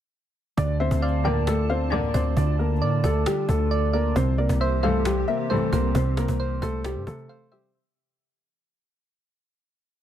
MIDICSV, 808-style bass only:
0, 0, Header, 1, 2, 480
1, 0, Start_track
1, 0, Key_signature, -1, "minor"
1, 0, Tempo, 447761
1, 617, Time_signature, 4, 2, 24, 8
1, 10749, End_track
2, 0, Start_track
2, 0, Title_t, "808-style bass"
2, 0, Program_c, 0, 38
2, 617, Note_on_c, 0, 38, 117
2, 963, Note_off_c, 0, 38, 0
2, 977, Note_on_c, 0, 38, 102
2, 2254, Note_off_c, 0, 38, 0
2, 2297, Note_on_c, 0, 38, 107
2, 2528, Note_off_c, 0, 38, 0
2, 2537, Note_on_c, 0, 38, 114
2, 3017, Note_on_c, 0, 45, 101
2, 3033, Note_off_c, 0, 38, 0
2, 3245, Note_off_c, 0, 45, 0
2, 3257, Note_on_c, 0, 38, 104
2, 3487, Note_off_c, 0, 38, 0
2, 3738, Note_on_c, 0, 38, 109
2, 4429, Note_off_c, 0, 38, 0
2, 4457, Note_on_c, 0, 36, 117
2, 4803, Note_off_c, 0, 36, 0
2, 4817, Note_on_c, 0, 36, 100
2, 5624, Note_off_c, 0, 36, 0
2, 6138, Note_on_c, 0, 36, 108
2, 6368, Note_off_c, 0, 36, 0
2, 6377, Note_on_c, 0, 36, 114
2, 6723, Note_off_c, 0, 36, 0
2, 6737, Note_on_c, 0, 36, 99
2, 7083, Note_off_c, 0, 36, 0
2, 7097, Note_on_c, 0, 36, 110
2, 7457, Note_on_c, 0, 43, 101
2, 7473, Note_off_c, 0, 36, 0
2, 7571, Note_off_c, 0, 43, 0
2, 7578, Note_on_c, 0, 48, 108
2, 7808, Note_off_c, 0, 48, 0
2, 10749, End_track
0, 0, End_of_file